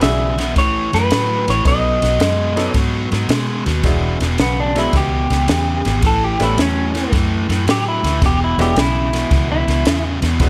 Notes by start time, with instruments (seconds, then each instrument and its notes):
0.00 fingered electric bass B1, overdriven electric guitar E2 C#3, upright piano D4 E4 F#4 G#4, clean electric guitar E5, snare, ride
0.38 overdriven electric guitar E2 B2, snare, ride
0.56 fingered electric bass A1, overdriven electric guitar A2 E3, clean electric guitar C#5, kick, snare, ride
0.93 fingered electric bass F#2, overdriven electric guitar A2 E3, clean electric guitar B4, snare, ride
1.10 overdriven electric guitar A2 F#3, fingered electric bass A2, snare, ride
1.48 fingered electric bass A1, overdriven electric guitar A2 E3, clean electric guitar C#5, snare, ride
1.64 fingered electric bass B1, overdriven electric guitar B2 F#3, upright piano B3 C#4 D#4 A4, clean electric guitar D#5, kick, snare, ride
2.02 fingered electric bass B1, overdriven electric guitar B2 F#3, snare, ride
2.20 fingered electric bass F#2, overdriven electric guitar B2 G#3, snare, ride
2.56 overdriven electric guitar B2 F#3, upright piano B3 C#4 D#4 A4, snare, ride
2.74 fingered electric bass G#2, overdriven electric guitar B2 F#3, clean electric guitar C#5, kick, snare, ride
3.12 fingered electric bass G#2, overdriven electric guitar B2 F#3, snare, ride
3.29 fingered electric bass B2, overdriven electric guitar B2 G#3, snare, ride
3.66 fingered electric bass D#2, overdriven electric guitar B2 F#3, snare, ride
3.83 fingered electric bass E1, overdriven electric guitar E2 B2, upright piano F#3 G#3 B3 D4 E4, kick, snare, ride
4.20 fingered electric bass E1, overdriven electric guitar E2 B2, snare, ride
4.38 fingered electric bass B1, overdriven electric guitar E2 C#3, clean electric guitar B3, snare, ride
4.60 clean electric guitar D4
4.75 overdriven electric guitar E2 B2, upright piano F#3 G#3 B3 D4 E4, clean electric guitar E4, snare, ride
4.93 fingered electric bass C#2, overdriven electric guitar E2 B2, clean electric guitar G4, kick, snare, ride
5.30 fingered electric bass C#2, overdriven electric guitar E2 B2, snare, ride
5.47 overdriven electric guitar E2 C#3, fingered electric bass E2, snare, ride
5.85 fingered electric bass G#1, overdriven electric guitar E2 B2, snare, ride
6.02 fingered electric bass A1, overdriven electric guitar A2 E3, kick, snare, ride
6.07 clean electric guitar A4
6.24 clean electric guitar G4
6.40 fingered electric bass A1, overdriven electric guitar A2 E3, upright piano G3 A3 B3 C#4 E4, clean electric guitar E4, snare, ride
6.58 fingered electric bass E2, overdriven electric guitar A2 F#3, snare, ride
6.62 clean electric guitar C#4
6.94 overdriven electric guitar A2 E3, snare, ride
7.12 fingered electric bass F#2, overdriven electric guitar A2 E3, kick, snare, ride
7.49 fingered electric bass F#2, overdriven electric guitar A2 E3, snare, ride
7.67 fingered electric bass A2, overdriven electric guitar A2 F#3, snare, ride
7.71 clean electric guitar G4
7.88 clean electric guitar E4
8.03 fingered electric bass D2, overdriven electric guitar A2 E3, snare, ride
8.22 fingered electric bass E1, overdriven electric guitar E2 B2, kick, snare, ride
8.26 clean electric guitar G4
8.44 clean electric guitar E4
8.58 fingered electric bass E1, overdriven electric guitar E2 B2, upright piano F#3 G#3 B3 D4 E4, clean electric guitar G4, snare, ride
8.76 fingered electric bass B1, overdriven electric guitar E2 C#3, clean electric guitar E4, snare, ride
9.13 overdriven electric guitar E2 B2, snare, ride
9.31 fingered electric bass C#2, overdriven electric guitar E2 B2, kick, snare, ride
9.52 clean electric guitar E4
9.67 fingered electric bass C#2, overdriven electric guitar E2 B2, snare, ride
9.85 fingered electric bass E2, overdriven electric guitar E2 C#3, snare, ride
10.22 overdriven electric guitar E2 B2, fingered electric bass E2, snare, ride
10.40 fingered electric bass E1, overdriven electric guitar E2 B2, upright piano F#3 G#3 B3 D4 E4, kick, snare, ride